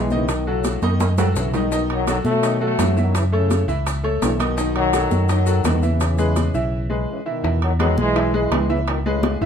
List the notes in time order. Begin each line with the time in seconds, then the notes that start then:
Already playing: B1
0.10 C#3 D#3 E3 D#4 D#5, high conga, maracas
0.28 B2 D#3, high bongo, high timbale, maracas
0.46 A2 C#3 F#3 F#4 A4, high conga
0.64 high bongo, high conga, high timbale, low timbale, maracas
0.82 F#2 D#3 D#4 D#5, high bongo, high conga, high timbale, maracas
1.00 high bongo, high conga, high timbale, maracas
1.18 F#3 F#4 A4, high bongo, low conga, low timbale, maracas
1.35 B1 C#3 E3, high bongo, low bongo, maracas
1.54 B2 D#3 D#4 D#5, high bongo, low conga, low timbale, maracas
1.72 D#3 D#4 D#5, high bongo, maracas
1.90 D#3 F#3, high bongo, high conga, high timbale
2.07 D#3 F#3 F#4 A4, high bongo, high conga, high timbale, low timbale, maracas
2.25 B2 F#3 A3, high bongo, high conga, maracas
2.43 D#3 D#4 D#5, high bongo, high conga, high timbale, maracas
2.61 F#3 A3 F#4 A4, high bongo, high conga
2.79 F#2, high bongo, low bongo, high conga, high timbale, low timbale, maracas
2.96 D#3 E3 F#3 E4 E5, high conga, maracas
3.15 C#3 E3, high bongo, high conga, high timbale, maracas
3.32 A2 C#3 A3 A4 C#5, high conga
3.50 high bongo, high conga, high timbale, low timbale, maracas
3.68 C#2 E3 E4 E5, high bongo, high conga, maracas
3.87 high bongo, high conga, high timbale, maracas
4.04 A3 A4 C#5, high bongo, high conga
4.22 B1 C#3 E3, high bongo, low bongo, high conga, high timbale, low timbale, maracas
4.33 E3
4.39 B2 D#3 D#4 D#5, high bongo, high conga, high timbale, maracas
4.57 D#3 D#4 D#5, high bongo, maracas
4.75 D#3 F#3, high bongo, high conga, high timbale
4.93 F#3 F#4 A4, high bongo, high conga, high timbale, low timbale, maracas
5.11 F#2, high bongo, high conga, maracas
5.29 D#3 F#3 D#4 D#5, high bongo, high conga, high timbale, maracas
5.46 F#3 F#4 A4, high bongo, high conga, maracas
5.64 E2 B2 D#3, high bongo, low bongo, high conga, high timbale, low timbale, maracas
5.83 C#3 E3 E4 E5, high conga, maracas
6.00 high bongo, high conga, high timbale, maracas
6.18 G#3 G#4 B4, high conga, maracas
6.36 high bongo, high conga, high timbale, low timbale, maracas
6.54 B1 E3 E4 E5, high bongo, high conga, maracas
6.90 G#3 G#4 B4
7.09 C#3 E3
7.26 B2 D#3 E3 E4 E5
7.44 E2 E3 E4 E5, high bongo, high conga
7.62 D#3 F#3, high bongo, high conga, high timbale
7.79 D#3 F#3 G#3 G#4 B4, high bongo, high conga, high timbale, low timbale
7.97 B1 E3 G#3, high bongo, high conga
8.15 E3 E4 E5, high bongo, high conga, high timbale
8.33 E3 G#3 G#4 B4, high bongo, high conga
8.51 C#2, high bongo, low bongo, high conga, high timbale, low timbale
8.69 C#3 E3 E4 E5, high conga
8.88 B2 D#3, high bongo, high timbale
9.05 A2 C#3 G#3 G#4 B4, high conga
9.23 high bongo, high conga, high timbale, low timbale
9.41 G#1 E3 E4 E5, high bongo, high conga